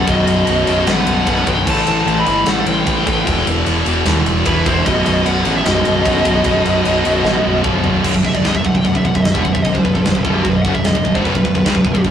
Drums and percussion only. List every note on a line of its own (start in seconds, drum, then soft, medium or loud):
0.07 kick loud
0.07 ride loud
0.27 ride medium
0.47 ride loud
0.67 ride medium
0.87 snare loud
0.87 ride loud
1.07 ride medium
1.27 kick loud
1.27 ride loud
1.47 kick loud
1.47 ride medium
1.67 kick loud
1.67 crash loud
1.87 ride medium
2.08 ride medium
2.26 ride medium
2.46 snare loud
2.46 ride medium
2.66 ride medium
2.87 kick loud
2.87 ride loud
3.07 kick loud
3.07 ride medium
3.27 kick loud
3.27 ride loud
3.47 ride medium
3.66 ride loud
3.86 ride medium
4.06 snare loud
4.06 ride loud
4.26 ride medium
4.45 kick loud
4.45 ride loud
4.66 kick loud
4.66 ride medium
4.86 kick loud
4.86 ride loud
5.06 ride medium
5.26 ride loud
5.45 ride medium
5.66 snare loud
5.66 ride loud
5.85 ride medium
6.05 kick medium
6.05 ride loud
6.25 kick medium
6.25 ride medium
6.44 kick loud
6.44 ride loud
6.65 ride medium
6.85 ride loud
7.05 ride medium
7.25 snare medium
7.64 kick medium
7.64 mid tom loud
7.84 floor tom medium
8.04 kick loud
8.04 crash loud
8.04 china medium
8.14 kick medium
8.25 kick medium
8.35 kick medium
8.44 snare loud
8.44 china medium
8.55 kick medium
8.65 kick medium
8.75 kick medium
8.85 kick medium
8.85 china medium
8.95 kick medium
9.05 kick medium
9.15 kick medium
9.25 snare loud
9.25 china medium
9.35 kick loud
9.45 kick medium
9.55 kick medium
9.64 kick medium
9.64 china medium
9.75 kick medium
9.85 kick medium
9.95 kick medium
10.05 snare loud
10.05 china medium
10.15 kick medium
10.25 kick medium
10.45 kick medium
10.45 china medium
10.65 kick loud
10.75 kick medium
10.84 snare loud
10.84 china medium
10.95 kick medium
11.05 kick medium
11.15 kick medium
11.25 kick medium
11.25 china medium
11.35 kick medium
11.45 kick medium
11.55 kick medium
11.65 snare loud
11.65 china medium
11.75 kick medium
11.85 kick medium
11.95 kick medium
12.04 kick medium
12.04 china medium